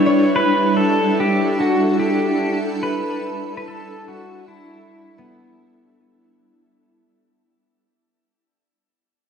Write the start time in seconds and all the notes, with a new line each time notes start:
Already playing: G3 D4 E4 B4 C#5 E5
0.06 C#5
0.21 A4
0.36 B4
0.77 A4
1.20 G4
1.60 F#4
2.00 G4
2.83 B4
3.57 B4
3.68 A4
4.08 F#4
4.48 E4
5.18 B3